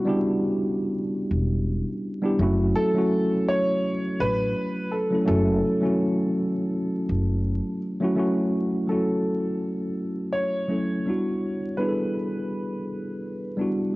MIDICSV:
0, 0, Header, 1, 4, 480
1, 0, Start_track
1, 0, Tempo, 722892
1, 1588, Time_signature, 4, 2, 24, 8
1, 9268, End_track
2, 0, Start_track
2, 0, Title_t, "Upright piano"
2, 0, Program_c, 0, 0
2, 1829, Note_on_c, 0, 69, 107
2, 2312, Note_on_c, 0, 73, 105
2, 2323, Note_off_c, 0, 69, 0
2, 2790, Note_on_c, 0, 71, 113
2, 2804, Note_off_c, 0, 73, 0
2, 3265, Note_on_c, 0, 69, 78
2, 3283, Note_off_c, 0, 71, 0
2, 3494, Note_off_c, 0, 69, 0
2, 3504, Note_on_c, 0, 69, 80
2, 5159, Note_off_c, 0, 69, 0
2, 5902, Note_on_c, 0, 69, 73
2, 6857, Note_on_c, 0, 73, 87
2, 6894, Note_off_c, 0, 69, 0
2, 7817, Note_on_c, 0, 71, 71
2, 7851, Note_off_c, 0, 73, 0
2, 8996, Note_off_c, 0, 71, 0
2, 9268, End_track
3, 0, Start_track
3, 0, Title_t, "Tine electric piano"
3, 0, Program_c, 1, 4
3, 0, Control_c, 1, 64, 127
3, 0, Note_on_c, 1, 55, 80
3, 0, Note_on_c, 1, 59, 83
3, 0, Note_on_c, 1, 61, 56
3, 0, Note_on_c, 1, 62, 76
3, 0, Note_on_c, 1, 64, 82
3, 0, Note_on_c, 1, 66, 109
3, 31, Note_off_c, 1, 55, 0
3, 31, Note_on_c, 1, 55, 90
3, 40, Note_off_c, 1, 59, 0
3, 40, Note_on_c, 1, 59, 69
3, 46, Note_off_c, 1, 62, 0
3, 46, Note_on_c, 1, 62, 75
3, 51, Note_off_c, 1, 64, 0
3, 51, Note_on_c, 1, 64, 73
3, 59, Note_on_c, 1, 67, 93
3, 665, Note_off_c, 1, 55, 0
3, 669, Note_off_c, 1, 59, 0
3, 672, Note_off_c, 1, 62, 0
3, 675, Note_off_c, 1, 64, 0
3, 679, Note_off_c, 1, 67, 0
3, 1471, Note_on_c, 1, 55, 75
3, 1476, Note_on_c, 1, 59, 82
3, 1484, Note_on_c, 1, 62, 78
3, 1491, Note_on_c, 1, 64, 76
3, 1497, Note_on_c, 1, 67, 90
3, 1546, Note_off_c, 1, 55, 0
3, 1549, Note_off_c, 1, 59, 0
3, 1553, Note_off_c, 1, 62, 0
3, 1556, Note_off_c, 1, 64, 0
3, 1560, Note_off_c, 1, 67, 0
3, 1588, Note_on_c, 1, 54, 88
3, 1595, Note_on_c, 1, 57, 81
3, 1596, Control_c, 1, 64, 0
3, 1598, Note_off_c, 1, 66, 0
3, 1600, Note_off_c, 1, 61, 0
3, 1602, Note_on_c, 1, 61, 77
3, 1609, Note_on_c, 1, 64, 85
3, 1614, Note_on_c, 1, 66, 96
3, 1707, Control_c, 1, 64, 127
3, 1827, Note_off_c, 1, 54, 0
3, 1831, Note_off_c, 1, 57, 0
3, 1834, Note_off_c, 1, 61, 0
3, 1837, Note_off_c, 1, 64, 0
3, 1840, Note_off_c, 1, 66, 0
3, 1952, Note_on_c, 1, 54, 75
3, 1960, Note_on_c, 1, 57, 70
3, 1969, Note_on_c, 1, 61, 66
3, 1974, Note_on_c, 1, 64, 62
3, 1978, Note_on_c, 1, 66, 83
3, 2585, Note_off_c, 1, 54, 0
3, 2589, Note_off_c, 1, 57, 0
3, 2593, Note_off_c, 1, 61, 0
3, 2596, Note_off_c, 1, 64, 0
3, 2598, Note_off_c, 1, 66, 0
3, 3391, Note_on_c, 1, 54, 66
3, 3399, Note_on_c, 1, 57, 63
3, 3405, Note_on_c, 1, 61, 60
3, 3411, Note_on_c, 1, 64, 64
3, 3419, Note_on_c, 1, 69, 78
3, 3466, Note_off_c, 1, 54, 0
3, 3471, Note_off_c, 1, 57, 0
3, 3473, Note_off_c, 1, 61, 0
3, 3476, Note_off_c, 1, 64, 0
3, 3481, Note_off_c, 1, 69, 0
3, 3486, Note_on_c, 1, 54, 70
3, 3493, Note_on_c, 1, 57, 68
3, 3501, Note_on_c, 1, 61, 72
3, 3507, Note_on_c, 1, 64, 68
3, 3514, Note_on_c, 1, 66, 71
3, 3736, Note_off_c, 1, 54, 0
3, 3739, Note_off_c, 1, 57, 0
3, 3744, Note_off_c, 1, 61, 0
3, 3746, Note_off_c, 1, 64, 0
3, 3750, Note_off_c, 1, 66, 0
3, 3859, Note_on_c, 1, 54, 71
3, 3865, Note_on_c, 1, 57, 64
3, 3872, Note_on_c, 1, 61, 69
3, 3877, Note_on_c, 1, 64, 64
3, 3886, Note_on_c, 1, 66, 75
3, 4499, Note_off_c, 1, 54, 0
3, 4502, Note_off_c, 1, 57, 0
3, 4505, Note_off_c, 1, 61, 0
3, 4508, Note_off_c, 1, 64, 0
3, 4512, Note_off_c, 1, 66, 0
3, 5313, Note_on_c, 1, 54, 80
3, 5319, Note_on_c, 1, 57, 77
3, 5326, Note_on_c, 1, 61, 74
3, 5332, Note_on_c, 1, 64, 75
3, 5339, Note_on_c, 1, 66, 90
3, 5387, Note_off_c, 1, 54, 0
3, 5390, Note_off_c, 1, 57, 0
3, 5394, Note_off_c, 1, 61, 0
3, 5397, Note_off_c, 1, 64, 0
3, 5400, Note_off_c, 1, 66, 0
3, 5413, Note_on_c, 1, 54, 70
3, 5421, Note_on_c, 1, 57, 72
3, 5429, Note_on_c, 1, 61, 68
3, 5435, Control_c, 1, 64, 0
3, 5435, Note_on_c, 1, 64, 67
3, 5443, Note_on_c, 1, 66, 81
3, 5537, Control_c, 1, 64, 127
3, 5749, Note_off_c, 1, 54, 0
3, 5753, Note_off_c, 1, 57, 0
3, 5757, Note_off_c, 1, 61, 0
3, 5760, Note_off_c, 1, 64, 0
3, 5764, Note_off_c, 1, 66, 0
3, 5893, Note_on_c, 1, 54, 63
3, 5903, Note_on_c, 1, 57, 55
3, 5908, Note_on_c, 1, 61, 60
3, 5915, Note_on_c, 1, 64, 58
3, 5921, Note_on_c, 1, 66, 66
3, 6549, Note_off_c, 1, 54, 0
3, 6554, Note_off_c, 1, 57, 0
3, 6556, Note_off_c, 1, 61, 0
3, 6560, Note_off_c, 1, 64, 0
3, 6563, Note_off_c, 1, 66, 0
3, 7092, Note_on_c, 1, 54, 62
3, 7099, Note_on_c, 1, 57, 60
3, 7104, Note_on_c, 1, 61, 57
3, 7110, Note_on_c, 1, 64, 55
3, 7116, Note_on_c, 1, 69, 65
3, 7269, Note_off_c, 1, 54, 0
3, 7273, Note_off_c, 1, 57, 0
3, 7276, Note_off_c, 1, 61, 0
3, 7278, Note_off_c, 1, 64, 0
3, 7282, Note_off_c, 1, 69, 0
3, 7342, Note_on_c, 1, 55, 63
3, 7349, Note_on_c, 1, 59, 62
3, 7354, Note_on_c, 1, 62, 61
3, 7357, Control_c, 1, 64, 0
3, 7362, Note_on_c, 1, 64, 57
3, 7369, Note_on_c, 1, 66, 75
3, 7488, Control_c, 1, 64, 127
3, 7674, Note_off_c, 1, 55, 0
3, 7677, Note_off_c, 1, 59, 0
3, 7680, Note_off_c, 1, 62, 0
3, 7684, Note_off_c, 1, 64, 0
3, 7688, Note_off_c, 1, 66, 0
3, 7820, Note_on_c, 1, 55, 60
3, 7828, Note_on_c, 1, 59, 60
3, 7836, Note_on_c, 1, 62, 60
3, 7842, Note_on_c, 1, 64, 61
3, 7849, Note_on_c, 1, 68, 56
3, 7887, Note_off_c, 1, 68, 0
3, 7892, Note_on_c, 1, 69, 72
3, 8472, Note_off_c, 1, 55, 0
3, 8477, Note_off_c, 1, 59, 0
3, 8480, Note_off_c, 1, 62, 0
3, 8483, Note_off_c, 1, 64, 0
3, 8508, Note_off_c, 1, 69, 0
3, 9009, Note_on_c, 1, 55, 79
3, 9017, Note_on_c, 1, 59, 63
3, 9024, Note_on_c, 1, 62, 71
3, 9031, Note_on_c, 1, 64, 61
3, 9038, Note_on_c, 1, 66, 76
3, 9188, Note_off_c, 1, 55, 0
3, 9192, Note_off_c, 1, 59, 0
3, 9195, Note_off_c, 1, 62, 0
3, 9199, Note_off_c, 1, 64, 0
3, 9203, Note_off_c, 1, 66, 0
3, 9268, End_track
4, 0, Start_track
4, 0, Title_t, "Upright bass"
4, 0, Program_c, 2, 32
4, 868, Note_on_c, 2, 28, 86
4, 1196, Note_off_c, 2, 28, 0
4, 1587, Note_on_c, 2, 30, 96
4, 1797, Note_off_c, 2, 30, 0
4, 2788, Note_on_c, 2, 33, 79
4, 2997, Note_off_c, 2, 33, 0
4, 3504, Note_on_c, 2, 30, 106
4, 3715, Note_off_c, 2, 30, 0
4, 4709, Note_on_c, 2, 30, 89
4, 5036, Note_off_c, 2, 30, 0
4, 9268, End_track
0, 0, End_of_file